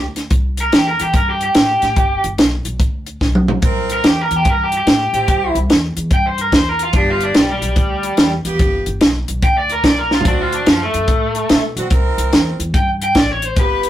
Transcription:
Already playing: upright bass D2
0.16 snare, closed hi-hat
0.31 upright bass C2, kick, closed hi-hat
0.57 overdriven electric guitar A#4, closed hi-hat
0.72 upright bass E2, overdriven electric guitar G4, snare, closed hi-hat
0.88 overdriven electric guitar A#4
0.99 upright bass E2, overdriven electric guitar G4, closed hi-hat
1.14 upright bass G2, overdriven electric guitar A#4, kick, closed hi-hat
1.30 overdriven electric guitar G4
1.41 overdriven electric guitar G4, closed hi-hat
1.55 upright bass A2, snare, closed hi-hat
1.82 upright bass A2, snare, closed hi-hat
1.96 upright bass G1, kick, closed hi-hat
2.24 upright bass G1, closed hi-hat
2.38 upright bass B1, snare, closed hi-hat
2.65 upright bass B1, closed hi-hat
2.80 upright bass D2, kick, closed hi-hat
3.06 closed hi-hat
3.21 upright bass B1, kick, snare
3.35 mid tom
3.48 floor tom
3.62 upright bass C2, horn section C4 E4 A#4, kick, closed hi-hat
3.90 overdriven electric guitar A#4, closed hi-hat
4.04 upright bass E2, overdriven electric guitar G4, snare, closed hi-hat
4.21 overdriven electric guitar A#4
4.31 upright bass E2, closed hi-hat
4.36 overdriven electric guitar G4
4.45 upright bass G2, kick, closed hi-hat
4.49 overdriven electric guitar A#4
4.63 overdriven electric guitar G4
4.72 closed hi-hat
4.77 overdriven electric guitar G4
4.87 upright bass A2, snare, closed hi-hat
5.13 upright bass A2, horn section C4 E4 G4, closed hi-hat
5.28 upright bass C2, kick, closed hi-hat
5.55 upright bass C2, closed hi-hat
5.69 upright bass E2, snare, closed hi-hat
5.96 upright bass E2, closed hi-hat
6.11 upright bass G2, overdriven electric guitar G5, kick, closed hi-hat
6.27 overdriven electric guitar C5
6.38 overdriven electric guitar A#4, closed hi-hat
6.52 upright bass E2, overdriven electric guitar C5, kick, snare, closed hi-hat
6.69 overdriven electric guitar A#4
6.79 overdriven electric guitar F4, closed hi-hat
6.92 upright bass G1, horn section B3 F4 G4, overdriven electric guitar D4, kick, closed hi-hat
7.10 overdriven electric guitar F4
7.21 overdriven electric guitar D4, closed hi-hat
7.35 upright bass B1, overdriven electric guitar G3, snare, closed hi-hat
7.50 overdriven electric guitar G3
7.62 upright bass B1, closed hi-hat
7.76 upright bass D2, kick, closed hi-hat
8.03 closed hi-hat
8.17 upright bass E2, snare, closed hi-hat
8.44 upright bass E2, horn section B3 F4 G4, closed hi-hat
8.59 upright bass G1, kick, closed hi-hat
8.86 upright bass G1, closed hi-hat
9.01 upright bass B1, snare, closed hi-hat
9.28 upright bass B1, closed hi-hat
9.42 upright bass D2, overdriven electric guitar G5, kick, closed hi-hat
9.58 overdriven electric guitar D5
9.69 overdriven electric guitar A#4, closed hi-hat
9.84 upright bass B1, overdriven electric guitar D5, kick, snare, closed hi-hat
9.98 overdriven electric guitar A#4
10.11 overdriven electric guitar F4, snare
10.21 floor tom
10.25 upright bass D2, horn section C4 D4 F#4, overdriven electric guitar D4, kick, closed hi-hat
10.41 overdriven electric guitar F4
10.53 overdriven electric guitar D4, closed hi-hat
10.66 upright bass F#2, overdriven electric guitar F3, snare, closed hi-hat
10.83 overdriven electric guitar A3
10.94 upright bass F#2, closed hi-hat
11.08 upright bass A2, kick, closed hi-hat
11.35 closed hi-hat
11.49 upright bass B2, snare, closed hi-hat
11.76 upright bass B1, horn section C4 D4 F#4, closed hi-hat
11.90 upright bass C2, horn section C4 E4 A#4, kick, closed hi-hat
12.18 upright bass C2, closed hi-hat
12.33 upright bass E2, snare, closed hi-hat
12.59 upright bass E2, closed hi-hat
12.74 upright bass G2, overdriven electric guitar G5, kick, closed hi-hat
13.02 overdriven electric guitar G5, closed hi-hat
13.15 upright bass A1, overdriven electric guitar D5, kick, snare, closed hi-hat
13.32 overdriven electric guitar C#5
13.42 overdriven electric guitar C5, closed hi-hat
13.56 upright bass G1, horn section B3 F4 G4, kick, closed hi-hat
13.60 overdriven electric guitar B4
13.83 closed hi-hat

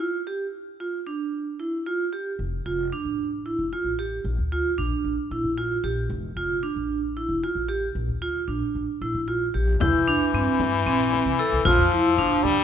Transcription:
0.00 vibraphone F4
0.27 vibraphone G4
0.80 vibraphone F4
1.07 vibraphone D4
1.60 vibraphone E4
1.86 vibraphone F4
2.13 vibraphone G4
2.39 upright bass F1
2.66 upright bass F1, vibraphone F4
2.93 vibraphone D4
3.05 upright bass A1
3.46 vibraphone E4
3.59 upright bass F1
3.73 vibraphone F4
3.84 upright bass A1
3.99 vibraphone G4
4.25 upright bass A#1
4.39 upright bass D2
4.52 vibraphone F4
4.78 upright bass A#1, vibraphone D4
5.04 upright bass A1
5.31 upright bass A#2, vibraphone E4
5.44 upright bass A#1
5.58 vibraphone F4
5.84 upright bass A#1, vibraphone G4
6.10 upright bass F1
6.36 upright bass F1, vibraphone F4
6.63 vibraphone D4
6.76 upright bass A1
7.17 vibraphone E4
7.29 upright bass F1
7.43 vibraphone F4
7.55 upright bass A1
7.69 vibraphone G4
7.95 upright bass A#1
8.08 upright bass D2
8.22 vibraphone F4
8.48 upright bass A#1, vibraphone D4
8.75 upright bass A1
9.01 upright bass A#2, vibraphone E4
9.15 upright bass A#1
9.28 vibraphone F4
9.54 upright bass A#1, vibraphone G4
9.80 upright bass C2, french horn E3, vibraphone E4, glockenspiel G6, frame drum
9.94 upright bass C2
10.07 vibraphone D4, frame drum
10.34 upright bass G2, vibraphone C4
10.59 upright bass G2, frame drum
10.86 upright bass A#1, vibraphone C4
11.13 frame drum
11.26 upright bass C2
11.39 vibraphone A4, glockenspiel E6
11.52 upright bass C2
11.65 upright bass A#1, french horn F3, vibraphone F4, frame drum
11.79 upright bass F2
11.92 vibraphone E4, frame drum
12.17 upright bass G1, vibraphone D4
12.44 upright bass D2, french horn G3, frame drum

